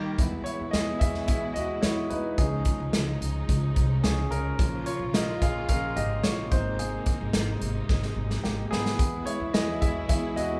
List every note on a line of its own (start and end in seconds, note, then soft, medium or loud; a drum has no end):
0.00 0.15 D#3 medium
0.00 0.21 D#3 medium
0.00 0.16 G3 medium
0.00 0.20 G3 medium
0.00 0.15 A#3 medium
0.00 0.21 A#3 medium
0.00 0.21 D#4 medium
0.00 0.16 G4 medium
0.00 0.20 G4 medium
0.00 0.21 A#4 loud
0.18 0.41 E2 medium
0.18 2.37 B2 medium
0.18 2.37 E3 medium
0.18 0.97 G#3 soft
0.18 4.55 G#3 medium
0.18 0.98 B3 soft
0.18 2.37 E4 medium
0.18 0.45 E4 soft
0.18 kick medium
0.18 closed hi-hat medium
0.44 0.72 E4 medium
0.44 0.73 C#5 medium
0.44 closed hi-hat medium
0.60 0.71 E2 medium
0.71 0.96 E2 medium
0.71 0.99 G#4 medium
0.71 1.01 D#5 medium
0.71 snare loud
0.71 closed hi-hat medium
0.99 1.24 E2 medium
0.99 1.27 G#4 medium
0.99 1.26 E5 medium
0.99 kick medium
0.99 closed hi-hat medium
1.14 snare soft
1.27 1.51 E2 medium
1.27 1.36 G#4 medium
1.27 1.33 E5 medium
1.27 kick medium
1.27 closed hi-hat medium
1.54 1.78 D#2 medium
1.54 1.82 F#4 medium
1.54 1.83 D#5 medium
1.54 closed hi-hat medium
1.82 2.06 E2 medium
1.82 2.10 E4 medium
1.82 2.11 C#5 medium
1.82 snare medium
1.82 closed hi-hat medium
2.10 2.33 E2 medium
2.10 2.38 D#4 medium
2.10 2.36 B4 medium
2.10 closed hi-hat medium
2.38 2.61 C#2 medium
2.38 6.47 C#3 medium
2.38 6.48 F3 medium
2.38 2.76 F3 soft
2.38 3.46 C#4 medium
2.38 4.56 D#4 medium
2.38 2.77 D#4 medium
2.38 3.45 G#4 medium
2.38 kick medium
2.38 closed hi-hat medium
2.65 kick medium
2.65 closed hi-hat medium
2.80 2.91 C#2 medium
2.93 3.16 C#2 medium
2.93 snare loud
2.93 closed hi-hat medium
3.21 3.44 C#2 medium
3.21 closed hi-hat medium
3.49 3.71 C#2 loud
3.49 kick medium
3.49 closed hi-hat medium
3.76 3.99 C2 medium
3.76 kick medium
3.76 closed hi-hat medium
4.03 4.26 C#2 medium
4.03 4.30 C#4 medium
4.03 4.29 G#4 medium
4.03 snare medium
4.03 closed hi-hat medium
4.30 4.53 C#2 medium
4.30 4.59 C#4 medium
4.30 4.82 A#4 medium
4.30 closed hi-hat medium
4.59 4.82 A#1 medium
4.59 4.96 F3 soft
4.59 8.95 A#3 medium
4.59 4.96 A#3 soft
4.59 4.96 C#4 medium
4.59 6.50 F4 medium
4.59 kick medium
4.59 closed hi-hat medium
4.86 5.13 F4 medium
4.86 5.15 C#5 medium
4.86 closed hi-hat medium
4.99 5.11 A#1 medium
5.13 5.36 A#1 medium
5.13 5.40 A#4 medium
5.13 5.40 D#5 medium
5.13 snare loud
5.13 closed hi-hat medium
5.42 5.64 A#1 medium
5.42 5.68 G#4 medium
5.42 5.68 F5 medium
5.42 kick medium
5.42 closed hi-hat medium
5.68 5.92 A#1 medium
5.68 5.94 F3 soft
5.68 5.94 A#3 soft
5.68 5.94 C#4 soft
5.68 5.95 A#4 medium
5.68 5.97 F5 medium
5.68 kick medium
5.68 closed hi-hat medium
5.96 6.19 G#1 medium
5.96 6.22 G4 medium
5.96 6.22 D#5 medium
5.96 closed hi-hat medium
6.23 6.50 F4 medium
6.23 6.52 C#5 medium
6.23 snare loud
6.23 closed hi-hat medium
6.51 6.97 G#1 medium
6.51 8.98 C3 medium
6.51 7.30 G#3 soft
6.51 10.60 G#3 medium
6.51 7.30 A#3 soft
6.51 6.78 C4 medium
6.51 6.78 D#4 medium
6.51 8.98 D#4 medium
6.51 6.80 C5 medium
6.51 kick medium
6.51 closed hi-hat medium
6.79 7.86 C4 medium
6.79 7.85 G#4 medium
6.79 closed hi-hat medium
7.06 kick medium
7.06 closed hi-hat medium
7.21 7.32 G#1 medium
7.33 7.57 G#1 medium
7.33 snare loud
7.33 closed hi-hat medium
7.61 7.84 G#1 medium
7.61 closed hi-hat medium
7.89 8.12 G#1 medium
7.89 kick medium
7.89 snare soft
8.03 snare soft
8.16 8.39 G#1 medium
8.31 snare medium
8.44 8.67 G#1 medium
8.44 8.70 A#3 medium
8.44 8.72 G4 medium
8.44 snare medium
8.71 8.94 G#1 medium
8.71 9.23 B3 medium
8.71 9.28 G#4 medium
8.71 snare medium
8.86 snare medium
8.98 9.22 E2 medium
8.98 10.60 B2 medium
8.98 10.60 E3 medium
8.98 10.60 E4 medium
8.98 kick medium
8.98 closed hi-hat medium
9.26 10.05 G#3 medium
9.26 10.05 B3 soft
9.26 10.06 E4 medium
9.26 9.55 C#5 medium
9.26 closed hi-hat medium
9.40 9.52 E2 medium
9.53 9.77 E2 medium
9.53 9.61 G#4 medium
9.53 9.60 D#5 medium
9.53 snare loud
9.53 closed hi-hat medium
9.81 10.04 E2 medium
9.81 10.07 G#4 medium
9.81 10.07 E5 medium
9.81 kick medium
9.81 closed hi-hat medium
10.09 10.32 E2 medium
10.09 10.34 G#3 soft
10.09 10.34 B3 soft
10.09 10.34 E4 soft
10.09 10.16 G#4 medium
10.09 10.15 E5 medium
10.09 kick medium
10.09 closed hi-hat medium
10.36 10.59 D#2 medium
10.36 10.60 F#4 medium
10.36 10.60 D#5 medium
10.36 closed hi-hat medium